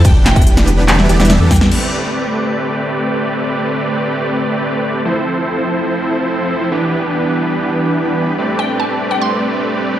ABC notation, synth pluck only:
X:1
M:4/4
L:1/16
Q:1/4=144
K:Am
V:1 name="Synth pluck"
g2 g g2 z8 z g g | z16 | z16 | z16 |
z16 | z2 g2 a2 z g c'2 z6 |]